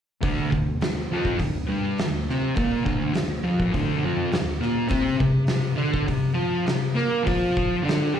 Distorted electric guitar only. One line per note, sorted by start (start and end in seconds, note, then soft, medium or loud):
0.21 0.49 D2 medium
0.21 0.50 D3 loud
0.51 0.74 D2 medium
0.82 1.04 D2 medium
1.12 1.39 F2 medium
1.12 1.40 F3 medium
1.39 1.63 D2 medium
1.69 1.97 G2 medium
1.69 1.98 G3 loud
2.00 2.22 D2 medium
2.30 2.56 C3 loud
2.30 2.57 C4 loud
2.56 2.84 A#2 loud
2.56 2.85 A#3 loud
2.84 3.13 D2 medium
2.84 3.14 D3 loud
3.14 3.38 D2 medium
3.44 3.73 F2 loud
3.44 3.73 F3 loud
3.73 4.02 D2 medium
3.73 4.03 D3 loud
4.04 4.31 F2 loud
4.04 4.33 F3 loud
4.32 4.56 D2 medium
4.61 4.88 A#2 loud
4.61 4.89 A#3 loud
4.88 5.16 C3 medium
4.88 5.19 C4 loud
5.17 5.43 C3 medium
5.48 5.73 C3 medium
5.76 6.07 D3 loud
5.76 6.08 D4 loud
6.06 6.32 C3 medium
6.34 6.65 F3 loud
6.34 6.66 F4 loud
6.65 6.91 C3 medium
6.95 7.25 A#3 loud
6.95 7.26 A#4 loud
7.23 7.83 F3 loud
7.23 7.84 F4 loud
7.83 8.13 D3 medium
7.83 8.14 D4 loud
8.13 8.20 G3 loud
8.13 8.20 G4 loud